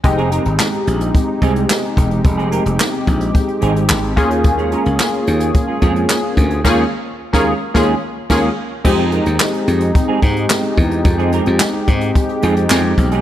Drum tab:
CC |----------------|----------------|----------------|x-----------x---|
HH |xxxx-xxxx-xx-xxx|xxxx-xxxxxxx-xxx|xxxx-xxxx-xx--xx|----------------|
CP |----x-------x---|----x-------x---|----x-------x---|----------------|
SD |----o-------o---|----o-------o---|----o-------o---|o----o--o---o---|
BD |o-------o-o---o-|o-----o-o-----o-|o-------o-o---o-|o----o--o---o---|

CC |x---------------|----------------|
HH |-xxx-xxxx-xx-xxx|xxxx--xxxxxx--xx|
CP |----x-------x---|----x-------x---|
SD |----o-------o---|----o-------o---|
BD |o-------o-o---o-|o-----o-o-----o-|